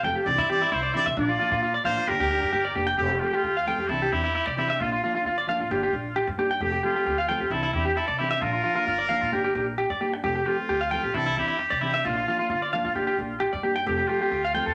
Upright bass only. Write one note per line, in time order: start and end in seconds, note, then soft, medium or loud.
0.03 0.13 F1 medium
0.26 0.35 C2 loud
0.38 0.63 G2 medium
0.72 0.89 C2 medium
1.06 1.14 C2 medium
1.17 1.34 A#1 loud
1.51 1.77 A#2 medium
1.85 1.94 A1 medium
2.07 2.17 G1 loud
2.20 2.37 D2 medium
2.43 2.51 G2 medium
2.53 2.73 G1 medium
2.76 2.96 F1 medium
2.98 3.16 F1 loud
3.44 3.70 D2 medium
3.78 3.86 F2 medium
3.89 4.06 C2 medium
4.12 4.38 E2 medium
4.47 4.81 C3 medium
4.80 4.97 A#1 medium
5.25 5.51 G1 medium
5.60 5.68 A1 medium
5.71 5.88 G1 loud
5.93 6.19 A#1 medium
6.28 6.62 G2 medium
6.60 6.78 F1 loud
7.06 7.33 D2 medium
7.40 7.49 F2 medium
7.50 7.68 C2 medium
7.73 8.00 E2 medium
8.09 8.43 C3 medium
8.42 8.59 A#1 loud
8.87 9.14 G1 medium
9.22 9.30 A#2 medium
9.32 9.50 G1 medium
9.55 9.82 A#1 medium
9.90 10.25 G2 medium
10.23 10.41 F1 medium
10.69 10.95 D2 medium
11.03 11.12 A#1 medium
11.14 11.31 C2 loud
11.37 11.63 E2 medium
11.72 12.06 C3 medium
12.05 12.22 A#1 loud
12.50 12.76 G1 medium
12.84 12.93 A1 medium
12.95 13.13 G1 medium
13.19 13.45 A#1 medium
13.53 13.88 G2 medium
13.86 14.03 F1 loud
14.32 14.58 D2 medium
14.66 14.74 F2 medium